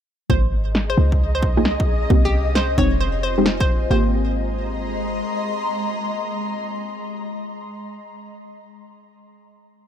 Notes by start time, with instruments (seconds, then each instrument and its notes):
0.30 808-style bass G#1, synth stab A#3 C4 F4 G4, ambient pad G#4, synth pluck C5, string machine D#5, kick
0.49 ambient pad D#5
0.75 snare
0.90 synth pluck C5
0.97 808-style bass C#2, synth stab A#3 D#4 F4 G#4, ambient pad C#4
1.12 kick
1.35 synth pluck C5
1.43 kick
1.57 synth stab A#3 D#4 F4 G#4
1.65 snare
1.80 kick
2.10 808-style bass C2, synth stab A#3 C4 D#4 G4, ambient pad C4, kick
2.22 synth pluck G4, ambient pad C5
2.55 synth pluck C5, snare
2.77 808-style bass F1, synth stab G#3 C4 D#4 G4, ambient pad F4, synth pluck C#5, kick
3.01 synth pluck C5
3.23 synth pluck C5
3.38 synth stab G#3 C4 D#4 G4
3.46 snare
3.60 synth pluck C5, kick
3.91 808-style bass G#1, ambient pad G#3, synth stab A#3 C4 F4 G4, synth pluck C5
4.00 ambient pad D#5
4.07 ambient pad A#5
4.12 ambient pad C6